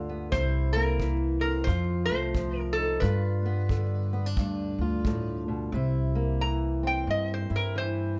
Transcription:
Already playing: upright bass D2, steel-string acoustic guitar G2 D3 F4
0.09 steel-string acoustic guitar B3
0.32 upright bass C2, steel-string acoustic guitar C3 E4, resonator guitar played with a steel bar C5, kick
0.73 steel-string acoustic guitar A#3, resonator guitar played with a steel bar A#4
1.00 steel-string acoustic guitar E3, kick
1.41 steel-string acoustic guitar C4, resonator guitar played with a steel bar A#4
1.64 upright bass F2, steel-string acoustic guitar F2, resonator guitar played with a steel bar C5, kick
1.68 steel-string acoustic guitar F4
2.06 upright bass C2, resonator guitar played with a steel bar C5
2.10 steel-string acoustic guitar A3
2.35 steel-string acoustic guitar F3, kick
2.60 resonator guitar played with a steel bar A#4
2.73 resonator guitar played with a steel bar A4
2.77 steel-string acoustic guitar D#4
3.00 steel-string acoustic guitar G2 F4, upright bass G2, resonator guitar played with a steel bar B4, kick
3.46 steel-string acoustic guitar B3
3.69 steel-string acoustic guitar D3, kick
4.13 steel-string acoustic guitar B3
4.26 steel-string acoustic guitar D4
4.37 upright bass D2, steel-string acoustic guitar G2, kick
4.78 upright bass D2, steel-string acoustic guitar F4
5.05 steel-string acoustic guitar A2, kick
5.48 steel-string acoustic guitar B2
5.72 upright bass C2, steel-string acoustic guitar C3 E4
6.15 steel-string acoustic guitar A#3
6.41 steel-string acoustic guitar E3, resonator guitar played with a steel bar A#5
6.83 steel-string acoustic guitar C4, resonator guitar played with a steel bar G5
7.07 upright bass G2, steel-string acoustic guitar G2, resonator guitar played with a steel bar D#5
7.34 resonator guitar played with a steel bar C5
7.50 upright bass G2, steel-string acoustic guitar E4
7.56 resonator guitar played with a steel bar A#4
7.75 steel-string acoustic guitar E3, resonator guitar played with a steel bar C5

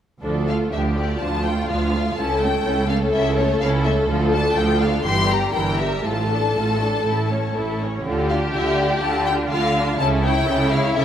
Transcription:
0.23 cello section D2, double bass section D2, viola section F3 D4, violin section A4
0.48 viola section A3 F4, violin section F5
0.72 cello section D2, double bass section D2, viola section F3 D4, violin section G4 E5
0.95 viola section A3 F4, violin section D5
1.20 cello section D2, double bass section D2, viola section F3 D4, violin section F4 A5
1.45 viola section A3 F4, violin section G5
1.69 double bass section D2, cello section D2, viola section F3 D4, violin section F5
1.94 viola section A3 F4
2.17 cello section C#2, double bass section C#2, viola section C#4 E4, violin section A4 A5
2.40 viola section A3 C#4, violin section G5
2.65 cello section C#2, double bass section C#2, viola section C#4 E4
2.88 viola section A3 C#4, violin section F5
3.12 cello section C#2, double bass section C#2, viola section C#4 E4, violin section E5
3.36 viola section A3 C#4, violin section C#5
3.60 cello section C#2, double bass section C#2, viola section C#4 E4, violin section F5
3.85 viola section A3 C#4, violin section E5
4.08 cello section D2, double bass section D2, viola section F3 F4
4.33 viola section A3 D4, violin section A5
4.56 cello section D2, double bass section D2, viola section F3 F4, violin section G5
4.81 viola section A3 D4, violin section F5
5.05 double bass section G1, cello section G2, viola section E3 E4, violin section G4 C6
5.29 viola section G3 G4, violin section A#5
5.53 double bass section G1, cello section G2, viola section E3 E4, violin section A#4 G5
5.79 viola section G3 G4, violin section E5
6.04 double bass section A1, cello section A2, viola section A3 F4, violin section A4 A5
6.30 viola section D4 A4
6.55 double bass section A1, cello section A2, viola section A3 F4
6.81 viola section D4 A4
7.04 double bass section A1, cello section A2, viola section E4 A4
7.30 viola section C#4 C#5
7.54 double bass section A1, cello section A2, viola section E4 A4
7.82 viola section C#4 C#5
8.04 double bass section D2, cello section D3, viola section F4 A4, violin section G4
8.29 viola section D4 F4, violin section F5
8.53 double bass section D2, cello section D3, viola section F4 A4, violin section E5
8.76 viola section D4 F4, violin section D5
9.01 double bass section D2, cello section D3, viola section F4 A4, violin section A5
9.26 viola section D4 F4, violin section G5
9.50 double bass section D2, cello section D3, violin section F4 F5, viola section F4 A4
9.78 viola section D4 F4
9.99 double bass section C#2, cello section C#3, viola section C#4 A4, violin section E4 A5
10.23 viola section E4 C#5, violin section G5
10.47 double bass section C#2, cello section C#3, viola section C#4 A4
10.72 viola section E4 C#5, violin section F5
10.95 double bass section C#2, cello section C#3, viola section C#4 A4, violin section E5

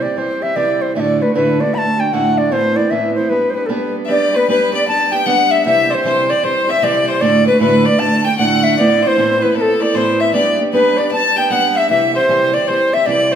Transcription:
0.02 steel-string acoustic guitar G3 C4 G4, flute D5
0.16 steel-string acoustic guitar E3 G3 C4 G4, flute C5
0.41 steel-string acoustic guitar G3 C4 G4, flute E5
0.56 steel-string acoustic guitar C3 E3 G3 C4 G4, flute D5
0.82 flute C5
0.95 steel-string acoustic guitar D2 A2 D3 A3 D4 F#4, flute E5
1.00 flute D5
1.20 steel-string acoustic guitar D3 A3 D4 F#4, flute B4
1.34 steel-string acoustic guitar D2 A2 D3 A3 D4 F#4, flute B4
1.59 steel-string acoustic guitar D3 A3 D4 F#4, flute D5
1.73 steel-string acoustic guitar D3 A3 D4 F#4, flute B5
1.78 flute A5
1.97 steel-string acoustic guitar D3 A3 D4 F#4, flute G5
2.12 steel-string acoustic guitar D2 A2 D3 A3 D4 F#4, flute F#5
2.38 flute D5
2.51 steel-string acoustic guitar A2 E3 B3 C4 E4, flute C5
2.76 steel-string acoustic guitar B3 C4 E4, flute D5
2.90 steel-string acoustic guitar A2 E3 B3 C4 E4, flute E5
3.15 steel-string acoustic guitar C4 E4, flute C5
3.19 steel-string acoustic guitar B3
3.29 steel-string acoustic guitar G3 B3 D4 G4, flute B4
3.50 flute C5
3.54 steel-string acoustic guitar B3 D4 G4, flute B4
3.66 steel-string acoustic guitar G3 B3 D4, flute A4 B4
3.70 steel-string acoustic guitar G4
4.05 steel-string acoustic guitar G3, fiddle E5
4.09 steel-string acoustic guitar B3 D4 G4, fiddle D5, flute D5
4.34 steel-string acoustic guitar B3 D4 G4, fiddle B4, flute B4
4.48 steel-string acoustic guitar G3 B3 D4 G4, fiddle B4, flute B4
4.73 steel-string acoustic guitar B3 D4 G4, fiddle D5, flute D5
4.87 steel-string acoustic guitar G3 B3 D4 G4, fiddle A5, flute A5
5.12 steel-string acoustic guitar B3 D4 G4, flute G5, fiddle G5
5.26 steel-string acoustic guitar G3 B3 D4 G4, fiddle F#5, flute F#5
5.51 fiddle E5, flute E5
5.66 steel-string acoustic guitar C3 E3 G3 C4 G4, fiddle E5, flute E5
5.90 steel-string acoustic guitar G3 C4 G4, fiddle C5, flute D5
5.94 flute C5
6.04 steel-string acoustic guitar C3 E3 G3 C4 G4, fiddle C5
6.29 steel-string acoustic guitar G3 C4 G4, fiddle D5, flute D5
6.43 steel-string acoustic guitar E3 G3 C4 G4, fiddle C5, flute C5
6.67 steel-string acoustic guitar G3 C4 G4, fiddle E5, flute E5
6.82 steel-string acoustic guitar C3 E3 G3 C4 G4, fiddle D5, flute D5
7.08 fiddle C5, flute C5
7.21 steel-string acoustic guitar D2 A2 D3 A3 D4 F#4, flute D5, fiddle D5
7.46 steel-string acoustic guitar D3 A3 D4 F#4, fiddle B4, flute B4
7.60 steel-string acoustic guitar D2 A2 D3 A3 D4 F#4, fiddle B4, flute B4
7.85 steel-string acoustic guitar D3 A3 D4 F#4, fiddle D5, flute D5
7.99 steel-string acoustic guitar D3 A3 D4 F#4, fiddle A5, flute A5
8.24 steel-string acoustic guitar D3 A3 D4 F#4, fiddle G5, flute G5
8.38 steel-string acoustic guitar D2 A2 D3 A3 D4 F#4, fiddle F#5, flute F#5
8.64 flute E5
8.77 steel-string acoustic guitar A2 E3 B3 C4 E4, fiddle D5, flute D5
9.02 steel-string acoustic guitar B3 C4 E4, fiddle C5, flute D5
9.07 flute C5
9.17 steel-string acoustic guitar A2 E3 B3 C4 E4
9.41 steel-string acoustic guitar B3 C4 E4, fiddle B4, flute B4
9.51 fiddle A4 B4
9.55 steel-string acoustic guitar E3 B3 C4 E4, flute B4
9.61 flute A4
9.80 steel-string acoustic guitar B3 C4 E4, fiddle D5, flute D5
9.94 steel-string acoustic guitar A2 E3 B3 C4 E4, fiddle C5, flute C5
10.20 fiddle E5, flute E5
10.33 steel-string acoustic guitar G3 B3 D4 G4, fiddle D5, flute D5
10.59 steel-string acoustic guitar B3 D4 G4
10.72 steel-string acoustic guitar G3 B3 D4 G4, fiddle B4, flute B4
10.97 steel-string acoustic guitar B3 D4 G4, flute D5, fiddle D5
11.11 steel-string acoustic guitar G3 B3 D4 G4, fiddle A5, flute A5
11.36 steel-string acoustic guitar B3 D4 G4, fiddle G5, flute G5
11.50 steel-string acoustic guitar G3 B3 D4 G4, fiddle F#5, flute F#5
11.76 fiddle E5, flute E5
11.90 steel-string acoustic guitar C3 E3 G3 C4 G4, fiddle E5, flute E5
12.15 steel-string acoustic guitar G3 C4 G4, fiddle C5, flute C5
12.28 steel-string acoustic guitar C3 E3 G3 C4 G4
12.53 steel-string acoustic guitar G3 C4 G4, fiddle D5, flute D5
12.67 steel-string acoustic guitar E3 G3 C4 G4, flute C5, fiddle C5
12.92 steel-string acoustic guitar G3 C4 G4, fiddle E5, flute E5
13.06 steel-string acoustic guitar C3 E3 G3 C4 G4, flute D5, fiddle D5
13.32 flute C5

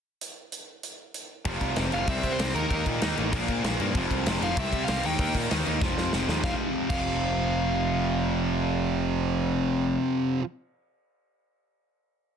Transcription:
0.21 closed hi-hat
0.52 closed hi-hat
0.83 closed hi-hat
1.14 closed hi-hat
1.45 picked electric bass F1, distorted electric guitar F2 C3 F3, kick, crash
1.61 picked electric bass C2, kick, crash
1.76 picked electric bass F1, distorted electric guitar F2 C3 F3, snare, crash
1.91 picked electric bass F1, distorted electric guitar F2 C3 F3, overdriven electric guitar F5, crash
2.07 picked electric bass C2, distorted electric guitar C3 G3 C4, overdriven electric guitar E5, kick, crash
2.23 picked electric bass C3, kick, crash
2.32 overdriven electric guitar C5
2.39 picked electric bass C2, distorted electric guitar C3 G3 C4, snare, crash
2.55 picked electric bass D#2, distorted electric guitar D#3 A#3 D#4, overdriven electric guitar A#4, crash
2.70 picked electric bass D#2, distorted electric guitar D#3 A#3 D#4, kick, crash
2.86 picked electric bass A#2, kick, crash
3.01 picked electric bass D#2, distorted electric guitar D#3 A#3 D#4, snare, crash
3.16 picked electric bass A1, distorted electric guitar D#3 A#3 D#4, crash
3.32 picked electric bass A#1, distorted electric guitar A#2 F3 A#3, kick, crash
3.48 picked electric bass A#2, kick, crash
3.63 picked electric bass A#1, distorted electric guitar A#2 F3 A#3, snare, crash
3.79 picked electric bass G2, distorted electric guitar A#2 F3 A#3, crash
3.95 picked electric bass F1, distorted electric guitar F2 C3 F3, kick, crash
4.11 picked electric bass C2, kick, crash
4.26 picked electric bass F1, distorted electric guitar F2 C3 F3, snare, crash
4.41 picked electric bass F1, distorted electric guitar F2 C3 F3, overdriven electric guitar F5, crash
4.57 picked electric bass C2, distorted electric guitar C3 G3 C4, overdriven electric guitar E5, kick, crash
4.72 picked electric bass C3, kick, crash
4.84 distorted electric guitar C3, overdriven electric guitar F5, crash
4.88 picked electric bass C2, distorted electric guitar G3 C4, snare
5.03 picked electric bass D#2, distorted electric guitar D#3 A#3 D#4, overdriven electric guitar G5, crash
5.19 picked electric bass D#2, distorted electric guitar D#3 A#3 D#4, kick, crash
5.35 picked electric bass A#2, kick, crash
5.51 picked electric bass D#2, distorted electric guitar D#3 A#3 D#4, snare, crash
5.66 picked electric bass D#2, distorted electric guitar D#3 A#3 D#4, crash
5.81 picked electric bass F1, distorted electric guitar F2 C3 F3, kick, snare
5.97 picked electric bass F2, snare
6.13 picked electric bass F1, distorted electric guitar F2 C3 F3, snare
6.28 picked electric bass D#2, distorted electric guitar F2 C3 F3, snare
6.43 picked electric bass F1, distorted electric guitar F2 C3 F3, overdriven electric guitar F5, kick, snare
6.90 picked electric bass F1, distorted electric guitar F2 C3 F3, overdriven electric guitar F5, kick, crash

